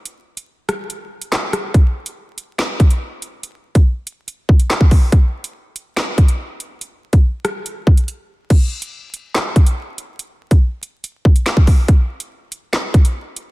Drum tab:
CC |----------------|----------------|----------------|----------------|
HH |x--x--x-x--xx-x-|x--x--x-x-xx--x-|x--x--x-x--xx-o-|x--x--x-x-xx--x-|
CP |------------x---|--------x-------|------------x---|--------x-------|
SD |------r-----o-r-|--------o-------|------------o---|--------o-------|
BD |----------------|o---------o-----|---o------o--oo-|o---------o-----|

CC |----------------|x---------------|----------------|----------------|
HH |x--x--x-x--xx---|x--x--x-x-xx--x-|x--x--x-x--xx-o-|x--x--x-x-xx--x-|
CP |----------------|--------x-------|------------x---|--------x-------|
SD |------r---------|--------o-------|------------o---|--------o-------|
BD |---o------o-----|o---------o-----|---o------o--oo-|o---------o-----|